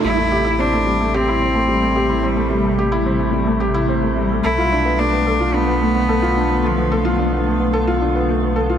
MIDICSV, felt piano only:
0, 0, Header, 1, 2, 480
1, 0, Start_track
1, 0, Tempo, 550459
1, 31, Time_signature, 4, 2, 24, 8
1, 7657, End_track
2, 0, Start_track
2, 0, Title_t, "Felt piano"
2, 0, Program_c, 0, 0
2, 0, Control_c, 0, 64, 127
2, 37, Note_on_c, 0, 55, 70
2, 40, Control_c, 0, 64, 0
2, 102, Note_off_c, 0, 55, 0
2, 148, Note_on_c, 0, 57, 70
2, 186, Control_c, 0, 64, 127
2, 264, Note_off_c, 0, 57, 0
2, 276, Note_on_c, 0, 67, 94
2, 387, Note_off_c, 0, 67, 0
2, 389, Note_on_c, 0, 64, 101
2, 504, Note_off_c, 0, 64, 0
2, 511, Note_on_c, 0, 60, 82
2, 625, Note_off_c, 0, 60, 0
2, 636, Note_on_c, 0, 57, 80
2, 747, Note_off_c, 0, 57, 0
2, 752, Note_on_c, 0, 55, 72
2, 820, Note_off_c, 0, 55, 0
2, 878, Note_on_c, 0, 57, 70
2, 988, Note_off_c, 0, 57, 0
2, 996, Note_on_c, 0, 67, 106
2, 1108, Note_off_c, 0, 67, 0
2, 1118, Note_on_c, 0, 64, 98
2, 1228, Note_off_c, 0, 64, 0
2, 1235, Note_on_c, 0, 60, 73
2, 1347, Note_off_c, 0, 60, 0
2, 1350, Note_on_c, 0, 57, 75
2, 1464, Note_off_c, 0, 57, 0
2, 1467, Note_on_c, 0, 55, 78
2, 1538, Note_off_c, 0, 55, 0
2, 1585, Note_on_c, 0, 57, 67
2, 1702, Note_off_c, 0, 57, 0
2, 1708, Note_on_c, 0, 67, 92
2, 1823, Note_off_c, 0, 67, 0
2, 1825, Note_on_c, 0, 64, 88
2, 1942, Note_off_c, 0, 64, 0
2, 1943, Note_on_c, 0, 60, 74
2, 2061, Note_off_c, 0, 60, 0
2, 2064, Note_on_c, 0, 57, 78
2, 2182, Note_off_c, 0, 57, 0
2, 2185, Note_on_c, 0, 55, 78
2, 2256, Note_off_c, 0, 55, 0
2, 2302, Note_on_c, 0, 57, 78
2, 2420, Note_off_c, 0, 57, 0
2, 2429, Note_on_c, 0, 67, 103
2, 2544, Note_off_c, 0, 67, 0
2, 2545, Note_on_c, 0, 64, 109
2, 2662, Note_off_c, 0, 64, 0
2, 2667, Note_on_c, 0, 60, 76
2, 2783, Note_off_c, 0, 60, 0
2, 2785, Note_on_c, 0, 57, 75
2, 2902, Note_off_c, 0, 57, 0
2, 2902, Note_on_c, 0, 55, 81
2, 2975, Note_off_c, 0, 55, 0
2, 3025, Note_on_c, 0, 57, 74
2, 3141, Note_on_c, 0, 67, 102
2, 3142, Note_off_c, 0, 57, 0
2, 3260, Note_off_c, 0, 67, 0
2, 3264, Note_on_c, 0, 64, 110
2, 3382, Note_off_c, 0, 64, 0
2, 3388, Note_on_c, 0, 60, 81
2, 3504, Note_off_c, 0, 60, 0
2, 3509, Note_on_c, 0, 57, 73
2, 3624, Note_off_c, 0, 57, 0
2, 3631, Note_on_c, 0, 55, 75
2, 3699, Note_off_c, 0, 55, 0
2, 3755, Note_on_c, 0, 57, 70
2, 3867, Note_off_c, 0, 57, 0
2, 3875, Note_on_c, 0, 69, 96
2, 3882, Control_c, 0, 64, 0
2, 3987, Note_off_c, 0, 69, 0
2, 3993, Note_on_c, 0, 65, 97
2, 4040, Control_c, 0, 64, 127
2, 4106, Note_off_c, 0, 65, 0
2, 4117, Note_on_c, 0, 62, 79
2, 4228, Note_off_c, 0, 62, 0
2, 4230, Note_on_c, 0, 59, 82
2, 4345, Note_off_c, 0, 59, 0
2, 4346, Note_on_c, 0, 57, 82
2, 4417, Note_off_c, 0, 57, 0
2, 4470, Note_on_c, 0, 59, 80
2, 4585, Note_off_c, 0, 59, 0
2, 4592, Note_on_c, 0, 69, 93
2, 4705, Note_off_c, 0, 69, 0
2, 4709, Note_on_c, 0, 65, 98
2, 4824, Note_off_c, 0, 65, 0
2, 4825, Note_on_c, 0, 62, 82
2, 4942, Note_off_c, 0, 62, 0
2, 4945, Note_on_c, 0, 59, 79
2, 5062, Note_off_c, 0, 59, 0
2, 5067, Note_on_c, 0, 57, 79
2, 5137, Note_off_c, 0, 57, 0
2, 5186, Note_on_c, 0, 59, 86
2, 5302, Note_off_c, 0, 59, 0
2, 5308, Note_on_c, 0, 69, 97
2, 5423, Note_off_c, 0, 69, 0
2, 5426, Note_on_c, 0, 65, 100
2, 5542, Note_off_c, 0, 65, 0
2, 5555, Note_on_c, 0, 62, 70
2, 5667, Note_off_c, 0, 62, 0
2, 5669, Note_on_c, 0, 59, 69
2, 5784, Note_off_c, 0, 59, 0
2, 5791, Note_on_c, 0, 57, 78
2, 5859, Note_off_c, 0, 57, 0
2, 5908, Note_on_c, 0, 59, 77
2, 6023, Note_off_c, 0, 59, 0
2, 6030, Note_on_c, 0, 69, 98
2, 6145, Note_off_c, 0, 69, 0
2, 6146, Note_on_c, 0, 65, 108
2, 6263, Note_off_c, 0, 65, 0
2, 6267, Note_on_c, 0, 62, 79
2, 6383, Note_off_c, 0, 62, 0
2, 6389, Note_on_c, 0, 59, 76
2, 6504, Note_off_c, 0, 59, 0
2, 6514, Note_on_c, 0, 57, 72
2, 6581, Note_off_c, 0, 57, 0
2, 6626, Note_on_c, 0, 59, 69
2, 6742, Note_off_c, 0, 59, 0
2, 6743, Note_on_c, 0, 69, 106
2, 6861, Note_off_c, 0, 69, 0
2, 6866, Note_on_c, 0, 65, 101
2, 6982, Note_off_c, 0, 65, 0
2, 6992, Note_on_c, 0, 62, 74
2, 7105, Note_off_c, 0, 62, 0
2, 7108, Note_on_c, 0, 59, 80
2, 7223, Note_off_c, 0, 59, 0
2, 7226, Note_on_c, 0, 57, 84
2, 7297, Note_off_c, 0, 57, 0
2, 7347, Note_on_c, 0, 59, 74
2, 7463, Note_off_c, 0, 59, 0
2, 7463, Note_on_c, 0, 69, 93
2, 7581, Note_off_c, 0, 69, 0
2, 7583, Note_on_c, 0, 65, 91
2, 7657, Note_off_c, 0, 65, 0
2, 7657, End_track
0, 0, End_of_file